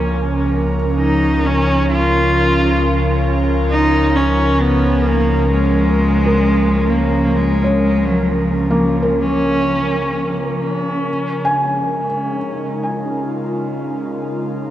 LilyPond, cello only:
\new Staff \with { instrumentName = "Cello" } { \time 4/4 \key bes \minor \tempo 4 = 65 r4 ees'8 des'8 f'4. r8 | ees'8 des'8 ces'8 bes8 aes4. bes8 | aes8. ges16 f4 des'4. r8 | r1 | }